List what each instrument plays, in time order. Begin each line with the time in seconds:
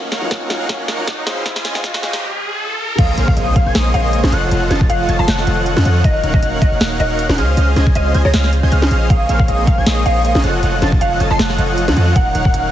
Already playing: analog synth pad D#3 F#3 A#3 C#4 F#4, riser
0.12 supersaw synth D#4 A#4 C#5 F5 F#5, snare, closed hi-hat
0.21 grand piano F#3 A#3 C#4 F4
0.31 supersaw synth D#4 A#4 C#5 F5 F#5, kick, snare, closed hi-hat
0.49 grand piano F#3 A#3 C#4 F4, supersaw synth D#4 A#4 C#5 F5 F#5, snare, closed hi-hat
0.61 supersaw synth D#4 A#4 C#5 F5 F#5
0.68 grand piano F#3 A#3 C#4 F4, supersaw synth D#4 A#4 C#5 F5 F#5, kick, snare, closed hi-hat
0.88 supersaw synth D#4 A#4 C#5 F5 F#5, snare, closed hi-hat
0.98 grand piano F#3 A#3 C#4 F4
1.07 kick, snare, closed hi-hat
1.18 supersaw synth D#4 A#4 C#5 F5 F#5
1.26 analog synth pad C#3 F3 G#3 C4 F4, grand piano G#3 C4 D#4 F4, supersaw synth C#4 G#4 C5 D#5 F5, snare, closed hi-hat
1.45 grand piano G#3 C4 D#4, supersaw synth C#4 G#4 C5 D#5 F5, kick, snare, closed hi-hat
1.56 snare
1.65 supersaw synth C#4 G#4 C5 D#5 G#5, snare, closed hi-hat
1.74 grand piano G#3 C4 D#4 F4, snare
1.84 supersaw synth C#4 G#4 C5 D#5 F5, kick, snare, closed hi-hat
1.94 snare
2.02 grand piano G#3 C4 D#4 F4, supersaw synth C#4 G#4 C5 D#5 G#5, snare, closed hi-hat
2.13 supersaw synth C#4 G#4 C5 D#5 A#5, snare
2.98 808-style bass A#1, analog synth pad C#3 G#3 A#3 C4 D#4, supersaw synth A#3 G#4 C5 C#5 D#5, synth pluck F5, digital synth lead D#6, kick, closed hi-hat, crash, impact
3.18 808-style bass A#1, supersaw synth A#3 G#4 C5 C#5 F5, digital synth lead F6, closed hi-hat
3.28 synth pluck F5, kick
3.37 808-style bass A#1, supersaw synth A#3 G#4 C5 C#5 D#5, digital synth lead D#6, closed hi-hat
3.56 808-style bass A#1, supersaw synth A#3 G#4 C5 C#5 F5, synth pluck F5, digital synth lead F6, kick, closed hi-hat
3.66 808-style bass A#1, supersaw synth A#3 G#4 C5 C#5 G#5, digital synth lead G#6
3.75 808-style bass A#1, supersaw synth A#3 G#4 C5 C#5 D#5, digital synth lead D#6, snare, closed hi-hat
3.94 808-style bass A#1, supersaw synth A#3 G#4 C5 C#5 D#5, synth pluck F5, digital synth lead D#6, closed hi-hat
4.13 closed hi-hat
4.24 808-style bass A#1, supersaw synth A#3 G#4 C5 C#5 D#5, digital synth lead D#6, snare
4.32 808-style bass F1, analog synth pad D#3 F#3 A3 C#4 F4, supersaw synth F3 F4 A4 C#5 D#5 F#5, digital synth lead F#6, closed hi-hat
4.51 808-style bass F1, supersaw synth F3 F4 A4 C#5 D#5 F#5, digital synth lead F#6, closed hi-hat
4.71 808-style bass F1, supersaw synth F3 F4 A4 C#5 D#5 A5, digital synth lead A6, snare, closed hi-hat
4.81 kick
4.90 808-style bass F1, supersaw synth F3 F4 A4 C#5 D#5 F#5, synth pluck F5, digital synth lead F#6, closed hi-hat
5.09 808-style bass F1, supersaw synth F3 F4 A4 C#5 D#5 A5, digital synth lead A6, closed hi-hat
5.19 808-style bass F1, supersaw synth F3 F4 A4 C#5 D#5 C6, synth pluck A5, digital synth lead C7
5.28 808-style bass F1, supersaw synth F3 F4 A4 C#5 D#5 F#5, digital synth lead F#6, snare, closed hi-hat
5.38 snare
5.47 808-style bass F1, supersaw synth F3 F4 A4 C#5 D#5 F#5, digital synth lead F#6, closed hi-hat
5.66 closed hi-hat
5.76 808-style bass F2, supersaw synth F3 F4 A4 C#5 D#5 F#5, digital synth lead F#6, snare
5.85 808-style bass F2, supersaw synth F3 F4 A4 C#5 D#5 F#5, digital synth lead F#6, closed hi-hat
6.04 808-style bass D#1, analog synth pad A#3 C#4 F#4, supersaw synth D#4 A#4 C#5 F5 F#5, synth pluck D#5, digital synth lead F#6, kick, closed hi-hat
6.23 808-style bass D#1, supersaw synth D#4 A#4 C#5 F5 F#5, digital synth lead F#6, closed hi-hat
6.34 synth pluck D#5, kick
6.43 808-style bass D#1, supersaw synth D#4 A#4 C#5 F5 F#5, digital synth lead F#6, closed hi-hat
6.62 808-style bass D#1, supersaw synth D#4 A#4 C#5 F5 F#5, synth pluck D#5, digital synth lead F#6, kick, closed hi-hat
6.72 808-style bass D#1, supersaw synth D#4 A#4 C#5 F5 F#5, digital synth lead F#6
6.81 808-style bass D#1, supersaw synth D#4 A#4 C#5 F5 F#5, digital synth lead F#6, snare, closed hi-hat
7.00 808-style bass D#1, supersaw synth D#4 A#4 C#5 F5 F#5, synth pluck D#5, digital synth lead F#6, closed hi-hat
7.19 closed hi-hat
7.29 808-style bass D#1, supersaw synth D#4 A#4 C#5 F5 F#5, digital synth lead F#6, snare
7.38 808-style bass C#2, analog synth pad C#3 F3 G#3 C4 F4, supersaw synth C#4 G#4 C5 D#5 F5, digital synth lead F6, closed hi-hat
7.57 808-style bass C#2, supersaw synth C#4 G#4 C5 D#5 F5, digital synth lead F6, closed hi-hat
7.76 808-style bass C#2, supersaw synth C#4 G#4 C5 D#5 G#5, digital synth lead G#6, snare, closed hi-hat
7.87 kick
7.95 808-style bass C#2, supersaw synth C#4 G#4 C5 D#5 F5, synth pluck D#5, digital synth lead F6, closed hi-hat
8.14 808-style bass C#2, supersaw synth C#4 G#4 C5 D#5 G#5, digital synth lead G#6, closed hi-hat
8.25 808-style bass C#2, supersaw synth C#4 G#4 C5 D#5 A#5, synth pluck C#5, digital synth lead A#6
8.34 808-style bass C#2, supersaw synth C#4 G#4 C5 D#5 F5, digital synth lead F6, snare, closed hi-hat
8.44 snare
8.53 closed hi-hat
8.63 808-style bass C#2, supersaw synth C#4 G#4 C5 D#5 G#5, digital synth lead G#6
8.72 808-style bass C#2, supersaw synth C#4 G#4 C5 D#5 F5, digital synth lead F6, closed hi-hat
8.82 snare
8.91 808-style bass A#1, supersaw synth C#4 G#4 C5 D#5 F5, digital synth lead F6, closed hi-hat
9.10 808-style bass A#1, analog synth pad G#3 A#3 D#4, supersaw synth A#3 G#4 C5 C#5 D#5, synth pluck F5, digital synth lead D#6, kick, closed hi-hat
9.29 808-style bass A#1, supersaw synth A#3 G#4 C5 C#5 F5, digital synth lead F6, closed hi-hat
9.39 synth pluck F5, kick
9.48 808-style bass A#1, supersaw synth A#3 G#4 C5 C#5 D#5, digital synth lead D#6, closed hi-hat
9.67 808-style bass A#1, supersaw synth A#3 G#4 C5 C#5 F5, synth pluck F5, digital synth lead F6, kick, closed hi-hat
9.78 808-style bass A#1, supersaw synth A#3 G#4 C5 C#5 G#5, digital synth lead G#6
9.86 808-style bass A#1, supersaw synth A#3 G#4 C5 C#5 D#5, digital synth lead D#6, snare, closed hi-hat
10.06 808-style bass A#1, supersaw synth A#3 G#4 C5 C#5 D#5, synth pluck F5, digital synth lead D#6, closed hi-hat
10.25 closed hi-hat
10.35 808-style bass A#1, supersaw synth A#3 G#4 C5 C#5 D#5, digital synth lead D#6, snare
10.44 808-style bass F1, analog synth pad D#3 F#3 A3 C#4 F4, supersaw synth F3 F4 A4 C#5 D#5 F#5, digital synth lead F#6, closed hi-hat
10.63 808-style bass F1, supersaw synth F3 F4 A4 C#5 D#5 F#5, digital synth lead F#6, closed hi-hat
10.82 808-style bass F1, supersaw synth F3 F4 A4 C#5 D#5 A5, digital synth lead A6, snare, closed hi-hat
10.92 kick
11.01 808-style bass F1, supersaw synth F3 F4 A4 C#5 D#5 F#5, synth pluck F5, digital synth lead F#6, closed hi-hat
11.20 808-style bass F1, supersaw synth F3 F4 A4 C#5 D#5 A5, digital synth lead A6, closed hi-hat
11.31 808-style bass F1, supersaw synth F3 F4 A4 C#5 D#5 C6, synth pluck A5, digital synth lead C7
11.39 808-style bass F1, supersaw synth F3 F4 A4 C#5 D#5 F#5, digital synth lead F#6, snare, closed hi-hat
11.50 snare
11.58 808-style bass F1, supersaw synth F3 F4 A4 C#5 D#5 F#5, digital synth lead F#6, closed hi-hat
11.78 closed hi-hat
11.88 808-style bass F2, supersaw synth F3 F4 A4 C#5 D#5 F#5, digital synth lead F#6, snare
11.97 808-style bass F2, supersaw synth F3 F4 A4 C#5 D#5 F#5, digital synth lead F#6, closed hi-hat
12.16 808-style bass D#1, analog synth pad A#3 F#4, supersaw synth D#4 A#4 C#5 F5 F#5, synth pluck F#5, digital synth lead F#6, kick, closed hi-hat
12.35 808-style bass D#1, supersaw synth D#4 A#4 C#5 F5 F#5, digital synth lead F#6, closed hi-hat
12.45 synth pluck F#5, kick
12.54 808-style bass D#1, supersaw synth D#4 A#4 C#5 F5 F#5, digital synth lead F#6, closed hi-hat